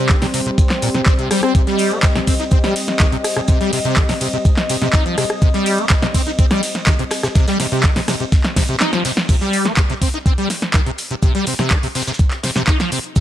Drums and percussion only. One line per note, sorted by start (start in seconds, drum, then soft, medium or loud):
0.09 kick loud
0.09 snare loud
0.09 clap loud
0.09 closed hi-hat medium
0.09 shaker medium
0.22 snare medium
0.22 snare soft
0.22 open hi-hat medium
0.34 open hi-hat loud
0.34 shaker medium
0.46 closed hi-hat soft
0.58 kick loud
0.58 closed hi-hat medium
0.58 shaker medium
0.70 snare medium
0.70 snare soft
0.70 clap soft
0.70 closed hi-hat soft
0.82 open hi-hat loud
0.82 shaker medium
0.95 snare soft
0.95 closed hi-hat soft
1.06 kick loud
1.06 snare loud
1.06 clap loud
1.06 closed hi-hat medium
1.06 shaker medium
1.19 closed hi-hat soft
1.31 cross-stick medium
1.31 open hi-hat loud
1.31 shaker medium
1.43 cross-stick medium
1.43 closed hi-hat soft
1.55 kick loud
1.55 closed hi-hat medium
1.55 shaker medium
1.67 snare medium
1.67 closed hi-hat soft
1.78 open hi-hat loud
1.78 ride medium
1.78 shaker medium
1.91 closed hi-hat soft
2.03 kick loud
2.03 snare loud
2.03 clap loud
2.03 closed hi-hat medium
2.03 shaker loud
2.15 snare medium
2.15 closed hi-hat soft
2.27 kick medium
2.27 open hi-hat loud
2.27 ride medium
2.27 shaker medium
2.40 snare soft
2.40 closed hi-hat soft
2.51 kick loud
2.51 closed hi-hat medium
2.51 shaker medium
2.64 snare medium
2.64 closed hi-hat soft
2.76 snare soft
2.76 open hi-hat loud
2.76 ride medium
2.76 shaker medium
2.88 snare soft
2.88 closed hi-hat soft
3.00 kick loud
3.00 snare loud
3.00 clap loud
3.00 closed hi-hat medium
3.00 shaker medium
3.12 closed hi-hat soft
3.24 cross-stick medium
3.24 open hi-hat loud
3.24 ride medium
3.24 shaker medium
3.37 cross-stick medium
3.48 kick loud
3.48 closed hi-hat medium
3.48 shaker medium
3.60 snare medium
3.60 closed hi-hat soft
3.73 open hi-hat loud
3.73 ride medium
3.73 shaker medium
3.85 closed hi-hat soft
3.96 kick loud
3.96 snare loud
3.96 clap loud
3.96 closed hi-hat medium
3.96 shaker medium
4.09 snare medium
4.09 open hi-hat medium
4.21 open hi-hat loud
4.21 ride medium
4.21 shaker medium
4.33 closed hi-hat soft
4.45 kick loud
4.45 closed hi-hat medium
4.45 shaker medium
4.57 snare medium
4.57 clap soft
4.57 closed hi-hat soft
4.69 open hi-hat loud
4.69 ride medium
4.69 shaker medium
4.82 snare soft
4.82 closed hi-hat soft
4.93 kick loud
4.93 snare loud
4.93 clap loud
4.93 closed hi-hat medium
4.93 shaker medium
5.06 closed hi-hat soft
5.18 cross-stick medium
5.18 open hi-hat loud
5.18 ride medium
5.18 shaker medium
5.30 cross-stick medium
5.30 closed hi-hat soft
5.42 kick loud
5.42 closed hi-hat medium
5.42 shaker medium
5.54 snare medium
5.54 closed hi-hat soft
5.66 open hi-hat loud
5.66 ride medium
5.66 shaker medium
5.78 closed hi-hat soft
5.89 kick loud
5.89 snare loud
5.89 clap loud
5.89 closed hi-hat medium
5.89 shaker medium
6.02 snare medium
6.02 closed hi-hat soft
6.14 kick medium
6.14 open hi-hat loud
6.14 ride medium
6.14 shaker medium
6.27 snare soft
6.27 closed hi-hat soft
6.39 kick loud
6.39 closed hi-hat medium
6.39 shaker medium
6.51 snare medium
6.51 closed hi-hat soft
6.63 snare soft
6.63 open hi-hat loud
6.63 ride medium
6.63 shaker medium
6.75 snare soft
6.75 closed hi-hat soft
6.86 kick loud
6.86 snare loud
6.86 clap loud
6.86 closed hi-hat medium
6.86 shaker loud
6.99 closed hi-hat soft
7.11 cross-stick medium
7.11 snare loud
7.11 open hi-hat loud
7.11 ride medium
7.11 shaker medium
7.23 cross-stick medium
7.23 snare loud
7.23 closed hi-hat soft
7.23 shaker medium
7.35 kick loud
7.35 snare loud
7.35 closed hi-hat medium
7.35 shaker medium
7.47 snare loud
7.47 closed hi-hat soft
7.47 shaker medium
7.60 snare soft
7.60 open hi-hat loud
7.60 ride medium
7.60 shaker medium
7.72 closed hi-hat soft
7.83 kick loud
7.83 snare loud
7.83 clap loud
7.83 closed hi-hat medium
7.83 shaker loud
7.96 snare medium
7.96 snare soft
7.96 open hi-hat medium
8.08 cross-stick medium
8.08 snare medium
8.08 open hi-hat loud
8.08 ride medium
8.08 shaker medium
8.20 closed hi-hat soft
8.32 kick loud
8.32 snare loud
8.32 closed hi-hat medium
8.32 shaker medium
8.44 snare medium
8.44 clap soft
8.44 closed hi-hat soft
8.56 kick medium
8.56 snare medium
8.56 open hi-hat loud
8.56 ride medium
8.56 shaker medium
8.69 closed hi-hat soft
8.80 snare medium
8.80 clap loud
8.80 closed hi-hat medium
8.80 shaker medium
8.93 snare medium
8.93 closed hi-hat soft
9.05 snare loud
9.05 open hi-hat loud
9.05 ride medium
9.05 shaker medium
9.17 snare soft
9.17 snare medium
9.17 closed hi-hat soft
9.29 kick loud
9.29 closed hi-hat medium
9.29 crash loud
9.29 shaker medium
9.41 snare soft
9.41 closed hi-hat soft
9.53 open hi-hat loud
9.53 shaker medium
9.65 snare medium
9.77 kick loud
9.77 snare loud
9.77 clap loud
9.77 closed hi-hat medium
9.77 shaker medium
9.90 snare medium
9.90 closed hi-hat soft
10.02 kick medium
10.02 open hi-hat loud
10.02 shaker medium
10.14 snare soft
10.14 closed hi-hat soft
10.26 kick loud
10.26 closed hi-hat medium
10.26 shaker medium
10.38 closed hi-hat soft
10.50 snare soft
10.50 open hi-hat loud
10.50 shaker medium
10.62 snare medium
10.62 closed hi-hat soft
10.74 kick loud
10.74 snare loud
10.74 clap loud
10.74 closed hi-hat medium
10.74 shaker medium
10.86 closed hi-hat soft
10.98 open hi-hat loud
10.98 shaker medium
11.11 closed hi-hat soft
11.23 kick loud
11.23 closed hi-hat medium
11.23 shaker medium
11.35 snare medium
11.35 closed hi-hat soft
11.46 open hi-hat loud
11.46 shaker medium
11.59 snare medium
11.59 closed hi-hat soft
11.70 kick loud
11.70 snare loud
11.70 clap loud
11.70 closed hi-hat medium
11.70 shaker medium
11.83 snare soft
11.83 open hi-hat medium
11.95 snare medium
11.95 open hi-hat loud
11.95 shaker medium
12.02 snare medium
12.02 shaker medium
12.07 snare medium
12.07 closed hi-hat soft
12.07 shaker medium
12.12 snare medium
12.12 shaker medium
12.19 kick loud
12.19 closed hi-hat medium
12.19 shaker medium
12.31 snare medium
12.31 clap soft
12.31 closed hi-hat soft
12.43 snare loud
12.43 snare soft
12.43 open hi-hat loud
12.43 shaker medium
12.56 snare loud
12.56 snare medium
12.56 shaker medium
12.67 kick loud
12.67 snare loud
12.67 clap loud
12.67 closed hi-hat medium
12.67 shaker medium
12.80 snare medium
12.80 snare loud
12.80 closed hi-hat soft
12.80 shaker medium
12.92 open hi-hat loud
12.92 shaker medium
13.04 closed hi-hat soft
13.16 kick loud
13.16 closed hi-hat medium
13.16 shaker medium